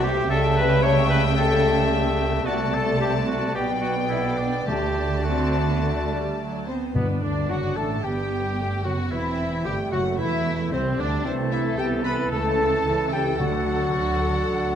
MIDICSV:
0, 0, Header, 1, 12, 480
1, 0, Start_track
1, 0, Key_signature, 1, "major"
1, 0, Tempo, 540054
1, 268, Time_signature, 4, 2, 24, 8
1, 3152, Tempo, 563380
1, 6512, Tempo, 536673
1, 11312, Tempo, 546448
1, 12977, End_track
2, 0, Start_track
2, 0, Title_t, "Flute"
2, 0, Program_c, 0, 73
2, 273, Note_on_c, 0, 81, 81
2, 710, Note_off_c, 0, 81, 0
2, 739, Note_on_c, 0, 81, 85
2, 1211, Note_off_c, 0, 81, 0
2, 1228, Note_on_c, 0, 81, 83
2, 2166, Note_off_c, 0, 81, 0
2, 2194, Note_on_c, 0, 81, 75
2, 3161, Note_on_c, 0, 79, 74
2, 3174, Note_off_c, 0, 81, 0
2, 4124, Note_on_c, 0, 81, 60
2, 4137, Note_off_c, 0, 79, 0
2, 4599, Note_off_c, 0, 81, 0
2, 4604, Note_on_c, 0, 81, 65
2, 5789, Note_off_c, 0, 81, 0
2, 5816, Note_on_c, 0, 72, 49
2, 5869, Note_off_c, 0, 72, 0
2, 6051, Note_on_c, 0, 71, 40
2, 6278, Note_off_c, 0, 71, 0
2, 6285, Note_on_c, 0, 74, 45
2, 6336, Note_off_c, 0, 74, 0
2, 6524, Note_on_c, 0, 78, 55
2, 6578, Note_off_c, 0, 78, 0
2, 6765, Note_on_c, 0, 81, 56
2, 7005, Note_on_c, 0, 79, 49
2, 7019, Note_off_c, 0, 81, 0
2, 7726, Note_off_c, 0, 79, 0
2, 7732, Note_on_c, 0, 78, 52
2, 7786, Note_off_c, 0, 78, 0
2, 7984, Note_on_c, 0, 76, 55
2, 8453, Note_on_c, 0, 79, 64
2, 8467, Note_off_c, 0, 76, 0
2, 8687, Note_off_c, 0, 79, 0
2, 8692, Note_on_c, 0, 78, 62
2, 8927, Note_off_c, 0, 78, 0
2, 8945, Note_on_c, 0, 76, 67
2, 9415, Note_on_c, 0, 72, 65
2, 9429, Note_off_c, 0, 76, 0
2, 9654, Note_on_c, 0, 74, 68
2, 9668, Note_off_c, 0, 72, 0
2, 9899, Note_on_c, 0, 72, 64
2, 9913, Note_off_c, 0, 74, 0
2, 10121, Note_on_c, 0, 76, 74
2, 10135, Note_off_c, 0, 72, 0
2, 10357, Note_off_c, 0, 76, 0
2, 10367, Note_on_c, 0, 79, 79
2, 10420, Note_off_c, 0, 79, 0
2, 10590, Note_on_c, 0, 83, 81
2, 10825, Note_off_c, 0, 83, 0
2, 10829, Note_on_c, 0, 81, 78
2, 11550, Note_on_c, 0, 79, 73
2, 11564, Note_off_c, 0, 81, 0
2, 11785, Note_off_c, 0, 79, 0
2, 11790, Note_on_c, 0, 78, 77
2, 12977, Note_off_c, 0, 78, 0
2, 12977, End_track
3, 0, Start_track
3, 0, Title_t, "Violin section"
3, 0, Program_c, 1, 48
3, 0, Note_on_c, 1, 72, 94
3, 232, Note_off_c, 1, 72, 0
3, 275, Note_on_c, 1, 76, 91
3, 2150, Note_off_c, 1, 76, 0
3, 2180, Note_on_c, 1, 74, 82
3, 5773, Note_off_c, 1, 74, 0
3, 5815, Note_on_c, 1, 72, 51
3, 6033, Note_off_c, 1, 72, 0
3, 6044, Note_on_c, 1, 71, 44
3, 6279, Note_off_c, 1, 71, 0
3, 6288, Note_on_c, 1, 74, 47
3, 6510, Note_on_c, 1, 78, 52
3, 6511, Note_off_c, 1, 74, 0
3, 6750, Note_on_c, 1, 81, 51
3, 6753, Note_off_c, 1, 78, 0
3, 6995, Note_off_c, 1, 81, 0
3, 7003, Note_on_c, 1, 79, 51
3, 7729, Note_on_c, 1, 78, 52
3, 7732, Note_off_c, 1, 79, 0
3, 7966, Note_on_c, 1, 76, 60
3, 7970, Note_off_c, 1, 78, 0
3, 8436, Note_off_c, 1, 76, 0
3, 8446, Note_on_c, 1, 79, 61
3, 8684, Note_on_c, 1, 78, 59
3, 8687, Note_off_c, 1, 79, 0
3, 8917, Note_on_c, 1, 76, 67
3, 8923, Note_off_c, 1, 78, 0
3, 9391, Note_off_c, 1, 76, 0
3, 9406, Note_on_c, 1, 72, 63
3, 9478, Note_off_c, 1, 72, 0
3, 9635, Note_on_c, 1, 74, 66
3, 9871, Note_off_c, 1, 74, 0
3, 9872, Note_on_c, 1, 72, 60
3, 9943, Note_off_c, 1, 72, 0
3, 10114, Note_on_c, 1, 76, 69
3, 10185, Note_off_c, 1, 76, 0
3, 10352, Note_on_c, 1, 79, 74
3, 10424, Note_off_c, 1, 79, 0
3, 10594, Note_on_c, 1, 83, 77
3, 10665, Note_off_c, 1, 83, 0
3, 10832, Note_on_c, 1, 81, 75
3, 11535, Note_off_c, 1, 81, 0
3, 11555, Note_on_c, 1, 79, 71
3, 11790, Note_off_c, 1, 79, 0
3, 11797, Note_on_c, 1, 78, 83
3, 12977, Note_off_c, 1, 78, 0
3, 12977, End_track
4, 0, Start_track
4, 0, Title_t, "Violin section"
4, 0, Program_c, 2, 48
4, 0, Note_on_c, 2, 76, 90
4, 232, Note_off_c, 2, 76, 0
4, 267, Note_on_c, 2, 79, 91
4, 2147, Note_off_c, 2, 79, 0
4, 2182, Note_on_c, 2, 81, 74
4, 3116, Note_off_c, 2, 81, 0
4, 3162, Note_on_c, 2, 79, 64
4, 4077, Note_off_c, 2, 79, 0
4, 4113, Note_on_c, 2, 81, 62
4, 5842, Note_off_c, 2, 81, 0
4, 6043, Note_on_c, 2, 59, 46
4, 6263, Note_off_c, 2, 59, 0
4, 6281, Note_on_c, 2, 62, 49
4, 6508, Note_off_c, 2, 62, 0
4, 6515, Note_on_c, 2, 66, 55
4, 6745, Note_on_c, 2, 69, 53
4, 6756, Note_off_c, 2, 66, 0
4, 6988, Note_on_c, 2, 67, 49
4, 6993, Note_off_c, 2, 69, 0
4, 7710, Note_off_c, 2, 67, 0
4, 7726, Note_on_c, 2, 66, 59
4, 7969, Note_off_c, 2, 66, 0
4, 7978, Note_on_c, 2, 64, 62
4, 8438, Note_on_c, 2, 67, 61
4, 8452, Note_off_c, 2, 64, 0
4, 8510, Note_off_c, 2, 67, 0
4, 8681, Note_on_c, 2, 66, 60
4, 8752, Note_off_c, 2, 66, 0
4, 8920, Note_on_c, 2, 64, 67
4, 9393, Note_off_c, 2, 64, 0
4, 9396, Note_on_c, 2, 60, 66
4, 9634, Note_off_c, 2, 60, 0
4, 9636, Note_on_c, 2, 62, 71
4, 9876, Note_off_c, 2, 62, 0
4, 10109, Note_on_c, 2, 69, 55
4, 10577, Note_off_c, 2, 69, 0
4, 10587, Note_on_c, 2, 69, 57
4, 10808, Note_off_c, 2, 69, 0
4, 10819, Note_on_c, 2, 69, 57
4, 11048, Note_off_c, 2, 69, 0
4, 11059, Note_on_c, 2, 69, 62
4, 11533, Note_off_c, 2, 69, 0
4, 11544, Note_on_c, 2, 69, 56
4, 11780, Note_off_c, 2, 69, 0
4, 12027, Note_on_c, 2, 69, 47
4, 12215, Note_off_c, 2, 69, 0
4, 12264, Note_on_c, 2, 66, 64
4, 12490, Note_off_c, 2, 66, 0
4, 12507, Note_on_c, 2, 69, 64
4, 12977, Note_off_c, 2, 69, 0
4, 12977, End_track
5, 0, Start_track
5, 0, Title_t, "Clarinet"
5, 0, Program_c, 3, 71
5, 0, Note_on_c, 3, 74, 76
5, 104, Note_off_c, 3, 74, 0
5, 265, Note_on_c, 3, 76, 87
5, 706, Note_off_c, 3, 76, 0
5, 744, Note_on_c, 3, 76, 86
5, 1214, Note_off_c, 3, 76, 0
5, 1224, Note_on_c, 3, 76, 80
5, 2193, Note_on_c, 3, 74, 82
5, 2206, Note_off_c, 3, 76, 0
5, 3157, Note_off_c, 3, 74, 0
5, 3167, Note_on_c, 3, 74, 66
5, 4095, Note_off_c, 3, 74, 0
5, 4112, Note_on_c, 3, 74, 64
5, 4587, Note_off_c, 3, 74, 0
5, 4605, Note_on_c, 3, 74, 66
5, 5662, Note_off_c, 3, 74, 0
5, 5807, Note_on_c, 3, 60, 53
5, 6029, Note_off_c, 3, 60, 0
5, 6060, Note_on_c, 3, 59, 42
5, 6283, Note_off_c, 3, 59, 0
5, 6293, Note_on_c, 3, 62, 49
5, 6514, Note_off_c, 3, 62, 0
5, 6521, Note_on_c, 3, 66, 53
5, 6754, Note_off_c, 3, 66, 0
5, 6764, Note_on_c, 3, 69, 53
5, 6871, Note_off_c, 3, 69, 0
5, 7002, Note_on_c, 3, 67, 50
5, 7717, Note_off_c, 3, 67, 0
5, 7726, Note_on_c, 3, 66, 53
5, 7835, Note_off_c, 3, 66, 0
5, 7968, Note_on_c, 3, 64, 58
5, 8454, Note_on_c, 3, 67, 62
5, 8468, Note_off_c, 3, 64, 0
5, 8674, Note_off_c, 3, 67, 0
5, 8680, Note_on_c, 3, 66, 62
5, 8790, Note_off_c, 3, 66, 0
5, 8919, Note_on_c, 3, 64, 64
5, 9401, Note_on_c, 3, 60, 61
5, 9414, Note_off_c, 3, 64, 0
5, 9641, Note_on_c, 3, 62, 66
5, 9655, Note_off_c, 3, 60, 0
5, 9862, Note_off_c, 3, 62, 0
5, 9868, Note_on_c, 3, 60, 64
5, 9977, Note_off_c, 3, 60, 0
5, 10112, Note_on_c, 3, 64, 69
5, 10340, Note_off_c, 3, 64, 0
5, 10346, Note_on_c, 3, 67, 81
5, 10583, Note_off_c, 3, 67, 0
5, 10591, Note_on_c, 3, 71, 83
5, 10826, Note_off_c, 3, 71, 0
5, 10830, Note_on_c, 3, 69, 74
5, 11534, Note_off_c, 3, 69, 0
5, 11551, Note_on_c, 3, 67, 73
5, 11658, Note_off_c, 3, 67, 0
5, 11786, Note_on_c, 3, 66, 84
5, 12977, Note_off_c, 3, 66, 0
5, 12977, End_track
6, 0, Start_track
6, 0, Title_t, "French horn section"
6, 0, Program_c, 4, 60
6, 53, Note_on_c, 4, 67, 109
6, 274, Note_on_c, 4, 69, 112
6, 278, Note_off_c, 4, 67, 0
6, 502, Note_off_c, 4, 69, 0
6, 520, Note_on_c, 4, 71, 118
6, 738, Note_on_c, 4, 73, 121
6, 749, Note_off_c, 4, 71, 0
6, 979, Note_off_c, 4, 73, 0
6, 981, Note_on_c, 4, 71, 103
6, 1089, Note_off_c, 4, 71, 0
6, 1229, Note_on_c, 4, 69, 104
6, 1698, Note_off_c, 4, 69, 0
6, 2187, Note_on_c, 4, 66, 99
6, 2295, Note_off_c, 4, 66, 0
6, 2427, Note_on_c, 4, 69, 109
6, 2663, Note_off_c, 4, 69, 0
6, 2665, Note_on_c, 4, 67, 104
6, 2774, Note_off_c, 4, 67, 0
6, 2926, Note_on_c, 4, 66, 87
6, 3031, Note_off_c, 4, 66, 0
6, 3165, Note_on_c, 4, 67, 94
6, 3268, Note_off_c, 4, 67, 0
6, 3401, Note_on_c, 4, 66, 81
6, 3627, Note_off_c, 4, 66, 0
6, 3631, Note_on_c, 4, 64, 96
6, 3737, Note_off_c, 4, 64, 0
6, 3887, Note_on_c, 4, 62, 67
6, 3991, Note_off_c, 4, 62, 0
6, 4114, Note_on_c, 4, 67, 91
6, 4589, Note_off_c, 4, 67, 0
6, 4616, Note_on_c, 4, 66, 73
6, 5580, Note_off_c, 4, 66, 0
6, 5810, Note_on_c, 4, 60, 63
6, 5916, Note_off_c, 4, 60, 0
6, 6057, Note_on_c, 4, 59, 44
6, 6160, Note_off_c, 4, 59, 0
6, 6290, Note_on_c, 4, 62, 59
6, 6512, Note_on_c, 4, 66, 62
6, 6513, Note_off_c, 4, 62, 0
6, 6754, Note_off_c, 4, 66, 0
6, 6758, Note_on_c, 4, 69, 60
6, 6989, Note_on_c, 4, 67, 58
6, 6994, Note_off_c, 4, 69, 0
6, 7725, Note_off_c, 4, 67, 0
6, 7732, Note_on_c, 4, 66, 64
6, 7840, Note_off_c, 4, 66, 0
6, 7978, Note_on_c, 4, 64, 68
6, 8442, Note_off_c, 4, 64, 0
6, 8457, Note_on_c, 4, 67, 70
6, 8693, Note_off_c, 4, 67, 0
6, 8696, Note_on_c, 4, 66, 67
6, 8934, Note_off_c, 4, 66, 0
6, 8947, Note_on_c, 4, 64, 78
6, 9406, Note_off_c, 4, 64, 0
6, 9426, Note_on_c, 4, 60, 76
6, 9529, Note_off_c, 4, 60, 0
6, 9666, Note_on_c, 4, 62, 81
6, 9886, Note_off_c, 4, 62, 0
6, 9886, Note_on_c, 4, 60, 72
6, 10120, Note_off_c, 4, 60, 0
6, 10123, Note_on_c, 4, 64, 87
6, 10353, Note_off_c, 4, 64, 0
6, 10360, Note_on_c, 4, 67, 87
6, 10466, Note_off_c, 4, 67, 0
6, 10597, Note_on_c, 4, 71, 94
6, 10703, Note_off_c, 4, 71, 0
6, 10848, Note_on_c, 4, 69, 88
6, 11543, Note_off_c, 4, 69, 0
6, 11548, Note_on_c, 4, 67, 88
6, 11787, Note_off_c, 4, 67, 0
6, 11789, Note_on_c, 4, 66, 92
6, 12977, Note_off_c, 4, 66, 0
6, 12977, End_track
7, 0, Start_track
7, 0, Title_t, "Oboe"
7, 0, Program_c, 5, 68
7, 25, Note_on_c, 5, 67, 92
7, 260, Note_off_c, 5, 67, 0
7, 265, Note_on_c, 5, 69, 101
7, 371, Note_off_c, 5, 69, 0
7, 495, Note_on_c, 5, 71, 95
7, 725, Note_off_c, 5, 71, 0
7, 730, Note_on_c, 5, 73, 99
7, 840, Note_off_c, 5, 73, 0
7, 974, Note_on_c, 5, 71, 101
7, 1084, Note_off_c, 5, 71, 0
7, 1215, Note_on_c, 5, 69, 89
7, 1691, Note_off_c, 5, 69, 0
7, 2179, Note_on_c, 5, 66, 89
7, 2435, Note_on_c, 5, 69, 89
7, 2448, Note_off_c, 5, 66, 0
7, 2668, Note_off_c, 5, 69, 0
7, 2673, Note_on_c, 5, 67, 78
7, 2781, Note_off_c, 5, 67, 0
7, 2908, Note_on_c, 5, 66, 81
7, 3147, Note_off_c, 5, 66, 0
7, 3152, Note_on_c, 5, 67, 76
7, 3258, Note_off_c, 5, 67, 0
7, 3379, Note_on_c, 5, 66, 71
7, 3487, Note_off_c, 5, 66, 0
7, 3613, Note_on_c, 5, 64, 80
7, 3858, Note_on_c, 5, 62, 63
7, 3871, Note_off_c, 5, 64, 0
7, 4096, Note_off_c, 5, 62, 0
7, 4101, Note_on_c, 5, 67, 81
7, 4588, Note_on_c, 5, 66, 61
7, 4601, Note_off_c, 5, 67, 0
7, 5566, Note_off_c, 5, 66, 0
7, 6053, Note_on_c, 5, 59, 43
7, 6157, Note_off_c, 5, 59, 0
7, 6286, Note_on_c, 5, 62, 52
7, 6504, Note_off_c, 5, 62, 0
7, 6509, Note_on_c, 5, 66, 56
7, 6754, Note_on_c, 5, 69, 58
7, 6767, Note_off_c, 5, 66, 0
7, 6999, Note_on_c, 5, 67, 51
7, 7013, Note_off_c, 5, 69, 0
7, 7718, Note_on_c, 5, 66, 60
7, 7732, Note_off_c, 5, 67, 0
7, 7961, Note_on_c, 5, 64, 60
7, 7975, Note_off_c, 5, 66, 0
7, 8430, Note_off_c, 5, 64, 0
7, 8435, Note_on_c, 5, 67, 61
7, 8546, Note_off_c, 5, 67, 0
7, 8680, Note_on_c, 5, 66, 65
7, 8791, Note_off_c, 5, 66, 0
7, 8928, Note_on_c, 5, 64, 64
7, 9397, Note_off_c, 5, 64, 0
7, 9406, Note_on_c, 5, 60, 71
7, 9649, Note_on_c, 5, 62, 73
7, 9663, Note_off_c, 5, 60, 0
7, 9869, Note_off_c, 5, 62, 0
7, 9875, Note_on_c, 5, 69, 64
7, 12977, Note_off_c, 5, 69, 0
7, 12977, End_track
8, 0, Start_track
8, 0, Title_t, "Viola section"
8, 0, Program_c, 6, 48
8, 0, Note_on_c, 6, 57, 87
8, 233, Note_off_c, 6, 57, 0
8, 268, Note_on_c, 6, 57, 86
8, 3117, Note_off_c, 6, 57, 0
8, 3152, Note_on_c, 6, 59, 74
8, 4073, Note_off_c, 6, 59, 0
8, 4106, Note_on_c, 6, 57, 56
8, 4515, Note_off_c, 6, 57, 0
8, 4598, Note_on_c, 6, 60, 82
8, 4937, Note_off_c, 6, 60, 0
8, 4975, Note_on_c, 6, 59, 68
8, 5091, Note_off_c, 6, 59, 0
8, 5098, Note_on_c, 6, 57, 69
8, 5335, Note_off_c, 6, 57, 0
8, 5338, Note_on_c, 6, 55, 64
8, 5574, Note_off_c, 6, 55, 0
8, 5582, Note_on_c, 6, 54, 60
8, 5810, Note_off_c, 6, 54, 0
8, 5820, Note_on_c, 6, 59, 62
8, 6052, Note_off_c, 6, 59, 0
8, 6054, Note_on_c, 6, 62, 58
8, 6965, Note_off_c, 6, 62, 0
8, 6996, Note_on_c, 6, 59, 53
8, 7485, Note_off_c, 6, 59, 0
8, 7498, Note_on_c, 6, 57, 47
8, 7733, Note_on_c, 6, 59, 47
8, 7735, Note_off_c, 6, 57, 0
8, 7972, Note_off_c, 6, 59, 0
8, 7977, Note_on_c, 6, 60, 56
8, 8442, Note_off_c, 6, 60, 0
8, 8453, Note_on_c, 6, 57, 67
8, 9410, Note_off_c, 6, 57, 0
8, 9415, Note_on_c, 6, 55, 53
8, 9881, Note_on_c, 6, 57, 70
8, 9884, Note_off_c, 6, 55, 0
8, 10345, Note_off_c, 6, 57, 0
8, 10355, Note_on_c, 6, 59, 71
8, 10822, Note_off_c, 6, 59, 0
8, 10838, Note_on_c, 6, 57, 76
8, 11315, Note_off_c, 6, 57, 0
8, 11316, Note_on_c, 6, 52, 62
8, 11789, Note_off_c, 6, 52, 0
8, 11789, Note_on_c, 6, 54, 67
8, 12977, Note_off_c, 6, 54, 0
8, 12977, End_track
9, 0, Start_track
9, 0, Title_t, "Bassoon"
9, 0, Program_c, 7, 70
9, 273, Note_on_c, 7, 55, 85
9, 710, Note_off_c, 7, 55, 0
9, 748, Note_on_c, 7, 55, 78
9, 1216, Note_off_c, 7, 55, 0
9, 1225, Note_on_c, 7, 55, 82
9, 2176, Note_on_c, 7, 57, 83
9, 2190, Note_off_c, 7, 55, 0
9, 3149, Note_off_c, 7, 57, 0
9, 3153, Note_on_c, 7, 59, 75
9, 4114, Note_on_c, 7, 57, 64
9, 4127, Note_off_c, 7, 59, 0
9, 4593, Note_off_c, 7, 57, 0
9, 4598, Note_on_c, 7, 57, 64
9, 5786, Note_off_c, 7, 57, 0
9, 6052, Note_on_c, 7, 47, 44
9, 6156, Note_off_c, 7, 47, 0
9, 6284, Note_on_c, 7, 50, 48
9, 6510, Note_off_c, 7, 50, 0
9, 6525, Note_on_c, 7, 54, 51
9, 6765, Note_on_c, 7, 57, 53
9, 6778, Note_off_c, 7, 54, 0
9, 7009, Note_on_c, 7, 55, 55
9, 7022, Note_off_c, 7, 57, 0
9, 7723, Note_off_c, 7, 55, 0
9, 7728, Note_on_c, 7, 54, 52
9, 7837, Note_off_c, 7, 54, 0
9, 7973, Note_on_c, 7, 52, 63
9, 8452, Note_on_c, 7, 55, 61
9, 8466, Note_off_c, 7, 52, 0
9, 8689, Note_on_c, 7, 54, 65
9, 8702, Note_off_c, 7, 55, 0
9, 8919, Note_off_c, 7, 54, 0
9, 8924, Note_on_c, 7, 52, 69
9, 9407, Note_on_c, 7, 48, 60
9, 9420, Note_off_c, 7, 52, 0
9, 9638, Note_off_c, 7, 48, 0
9, 9643, Note_on_c, 7, 50, 68
9, 9872, Note_off_c, 7, 50, 0
9, 9877, Note_on_c, 7, 52, 70
9, 11751, Note_off_c, 7, 52, 0
9, 11778, Note_on_c, 7, 50, 58
9, 12977, Note_off_c, 7, 50, 0
9, 12977, End_track
10, 0, Start_track
10, 0, Title_t, "Timpani"
10, 0, Program_c, 8, 47
10, 4117, Note_on_c, 8, 50, 83
10, 4809, Note_off_c, 8, 50, 0
10, 6052, Note_on_c, 8, 43, 61
10, 6722, Note_off_c, 8, 43, 0
10, 11786, Note_on_c, 8, 50, 72
10, 12473, Note_off_c, 8, 50, 0
10, 12977, End_track
11, 0, Start_track
11, 0, Title_t, "Cello section"
11, 0, Program_c, 10, 48
11, 0, Note_on_c, 10, 48, 99
11, 267, Note_on_c, 10, 49, 89
11, 269, Note_off_c, 10, 48, 0
11, 2146, Note_off_c, 10, 49, 0
11, 2186, Note_on_c, 10, 48, 81
11, 3154, Note_off_c, 10, 48, 0
11, 3154, Note_on_c, 10, 47, 75
11, 4108, Note_off_c, 10, 47, 0
11, 4113, Note_on_c, 10, 50, 67
11, 5876, Note_off_c, 10, 50, 0
11, 6048, Note_on_c, 10, 47, 42
11, 6116, Note_off_c, 10, 47, 0
11, 6285, Note_on_c, 10, 38, 49
11, 6510, Note_off_c, 10, 38, 0
11, 6513, Note_on_c, 10, 42, 54
11, 6751, Note_on_c, 10, 45, 53
11, 6755, Note_off_c, 10, 42, 0
11, 6995, Note_off_c, 10, 45, 0
11, 6999, Note_on_c, 10, 43, 53
11, 7716, Note_off_c, 10, 43, 0
11, 7730, Note_on_c, 10, 42, 55
11, 7971, Note_off_c, 10, 42, 0
11, 7973, Note_on_c, 10, 40, 61
11, 8447, Note_on_c, 10, 43, 59
11, 8449, Note_off_c, 10, 40, 0
11, 8519, Note_off_c, 10, 43, 0
11, 8688, Note_on_c, 10, 42, 66
11, 8925, Note_off_c, 10, 42, 0
11, 8929, Note_on_c, 10, 40, 69
11, 9407, Note_off_c, 10, 40, 0
11, 9409, Note_on_c, 10, 36, 63
11, 9642, Note_on_c, 10, 38, 70
11, 9645, Note_off_c, 10, 36, 0
11, 9874, Note_off_c, 10, 38, 0
11, 9885, Note_on_c, 10, 48, 74
11, 10300, Note_off_c, 10, 48, 0
11, 10351, Note_on_c, 10, 48, 73
11, 10773, Note_off_c, 10, 48, 0
11, 10829, Note_on_c, 10, 49, 77
11, 11253, Note_off_c, 10, 49, 0
11, 11305, Note_on_c, 10, 49, 68
11, 11728, Note_off_c, 10, 49, 0
11, 11784, Note_on_c, 10, 50, 70
11, 12209, Note_off_c, 10, 50, 0
11, 12271, Note_on_c, 10, 50, 59
11, 12695, Note_off_c, 10, 50, 0
11, 12751, Note_on_c, 10, 50, 59
11, 12977, Note_off_c, 10, 50, 0
11, 12977, End_track
12, 0, Start_track
12, 0, Title_t, "Double bass section"
12, 0, Program_c, 11, 48
12, 0, Note_on_c, 11, 36, 85
12, 263, Note_on_c, 11, 37, 83
12, 267, Note_off_c, 11, 36, 0
12, 2144, Note_off_c, 11, 37, 0
12, 2183, Note_on_c, 11, 36, 76
12, 3152, Note_off_c, 11, 36, 0
12, 3156, Note_on_c, 11, 35, 69
12, 4108, Note_off_c, 11, 35, 0
12, 4115, Note_on_c, 11, 38, 62
12, 5877, Note_off_c, 11, 38, 0
12, 6050, Note_on_c, 11, 35, 41
12, 6118, Note_off_c, 11, 35, 0
12, 6282, Note_on_c, 11, 38, 48
12, 6509, Note_off_c, 11, 38, 0
12, 6514, Note_on_c, 11, 30, 52
12, 6753, Note_on_c, 11, 33, 58
12, 6755, Note_off_c, 11, 30, 0
12, 6996, Note_off_c, 11, 33, 0
12, 7004, Note_on_c, 11, 31, 49
12, 7718, Note_off_c, 11, 31, 0
12, 7733, Note_on_c, 11, 30, 55
12, 7971, Note_on_c, 11, 28, 56
12, 7972, Note_off_c, 11, 30, 0
12, 8448, Note_off_c, 11, 28, 0
12, 8450, Note_on_c, 11, 31, 65
12, 8521, Note_off_c, 11, 31, 0
12, 8686, Note_on_c, 11, 30, 66
12, 8924, Note_off_c, 11, 30, 0
12, 8929, Note_on_c, 11, 28, 60
12, 9406, Note_on_c, 11, 36, 66
12, 9407, Note_off_c, 11, 28, 0
12, 9642, Note_on_c, 11, 38, 70
12, 9644, Note_off_c, 11, 36, 0
12, 9874, Note_off_c, 11, 38, 0
12, 9882, Note_on_c, 11, 36, 67
12, 10299, Note_off_c, 11, 36, 0
12, 10351, Note_on_c, 11, 36, 70
12, 10773, Note_off_c, 11, 36, 0
12, 10827, Note_on_c, 11, 37, 72
12, 11252, Note_off_c, 11, 37, 0
12, 11299, Note_on_c, 11, 37, 68
12, 11725, Note_off_c, 11, 37, 0
12, 11780, Note_on_c, 11, 38, 69
12, 12207, Note_off_c, 11, 38, 0
12, 12263, Note_on_c, 11, 38, 59
12, 12691, Note_off_c, 11, 38, 0
12, 12741, Note_on_c, 11, 38, 60
12, 12977, Note_off_c, 11, 38, 0
12, 12977, End_track
0, 0, End_of_file